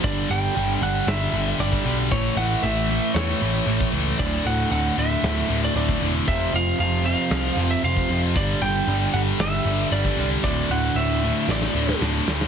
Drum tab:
CC |----------------|----------------|x---------------|----------------|
HH |o---o---o---o---|o---o---o---o---|----o---o---o---|o---o---o---o---|
SD |--------o-------|--------o-------|--------o-------|--------o-------|
BD |o------------o--|o------------o--|o------------o--|o------------o--|

CC |----------------|----------------|
HH |o---o---o---o---|o---o-----------|
SD |--------o-------|--------oo-oo-oo|
BD |o------------o--|o---------------|